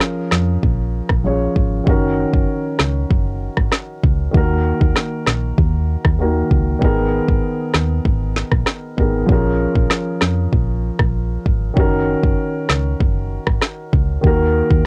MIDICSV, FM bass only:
0, 0, Header, 1, 2, 480
1, 0, Start_track
1, 0, Key_signature, -6, "minor"
1, 0, Tempo, 618557
1, 1451, Time_signature, 4, 2, 24, 8
1, 11534, End_track
2, 0, Start_track
2, 0, Title_t, "FM bass"
2, 0, Program_c, 0, 39
2, 249, Note_on_c, 0, 41, 93
2, 448, Note_off_c, 0, 41, 0
2, 489, Note_on_c, 0, 34, 107
2, 787, Note_off_c, 0, 34, 0
2, 852, Note_on_c, 0, 34, 94
2, 1149, Note_off_c, 0, 34, 0
2, 1211, Note_on_c, 0, 32, 91
2, 1409, Note_off_c, 0, 32, 0
2, 1451, Note_on_c, 0, 30, 109
2, 1749, Note_off_c, 0, 30, 0
2, 1812, Note_on_c, 0, 30, 96
2, 1911, Note_off_c, 0, 30, 0
2, 2170, Note_on_c, 0, 37, 94
2, 2369, Note_off_c, 0, 37, 0
2, 2410, Note_on_c, 0, 30, 110
2, 2708, Note_off_c, 0, 30, 0
2, 2773, Note_on_c, 0, 32, 89
2, 2872, Note_off_c, 0, 32, 0
2, 3131, Note_on_c, 0, 37, 93
2, 3329, Note_off_c, 0, 37, 0
2, 3371, Note_on_c, 0, 39, 108
2, 3669, Note_off_c, 0, 39, 0
2, 3733, Note_on_c, 0, 39, 100
2, 3831, Note_off_c, 0, 39, 0
2, 4092, Note_on_c, 0, 34, 94
2, 4290, Note_off_c, 0, 34, 0
2, 4330, Note_on_c, 0, 39, 117
2, 4628, Note_off_c, 0, 39, 0
2, 4693, Note_on_c, 0, 39, 89
2, 4990, Note_off_c, 0, 39, 0
2, 5050, Note_on_c, 0, 37, 87
2, 5249, Note_off_c, 0, 37, 0
2, 5291, Note_on_c, 0, 32, 101
2, 5588, Note_off_c, 0, 32, 0
2, 5652, Note_on_c, 0, 32, 104
2, 5751, Note_off_c, 0, 32, 0
2, 6010, Note_on_c, 0, 39, 93
2, 6209, Note_off_c, 0, 39, 0
2, 6248, Note_on_c, 0, 32, 105
2, 6547, Note_off_c, 0, 32, 0
2, 6611, Note_on_c, 0, 34, 101
2, 6710, Note_off_c, 0, 34, 0
2, 6969, Note_on_c, 0, 32, 89
2, 7168, Note_off_c, 0, 32, 0
2, 7209, Note_on_c, 0, 34, 107
2, 7507, Note_off_c, 0, 34, 0
2, 7570, Note_on_c, 0, 34, 97
2, 7670, Note_off_c, 0, 34, 0
2, 7931, Note_on_c, 0, 41, 97
2, 8129, Note_off_c, 0, 41, 0
2, 8169, Note_on_c, 0, 34, 106
2, 8467, Note_off_c, 0, 34, 0
2, 8532, Note_on_c, 0, 34, 98
2, 8829, Note_off_c, 0, 34, 0
2, 8891, Note_on_c, 0, 32, 92
2, 9089, Note_off_c, 0, 32, 0
2, 9131, Note_on_c, 0, 30, 105
2, 9429, Note_off_c, 0, 30, 0
2, 9492, Note_on_c, 0, 30, 98
2, 9591, Note_off_c, 0, 30, 0
2, 9851, Note_on_c, 0, 37, 93
2, 10049, Note_off_c, 0, 37, 0
2, 10090, Note_on_c, 0, 30, 108
2, 10388, Note_off_c, 0, 30, 0
2, 10453, Note_on_c, 0, 32, 90
2, 10552, Note_off_c, 0, 32, 0
2, 10812, Note_on_c, 0, 37, 90
2, 11010, Note_off_c, 0, 37, 0
2, 11052, Note_on_c, 0, 39, 103
2, 11349, Note_off_c, 0, 39, 0
2, 11413, Note_on_c, 0, 39, 97
2, 11511, Note_off_c, 0, 39, 0
2, 11534, End_track
0, 0, End_of_file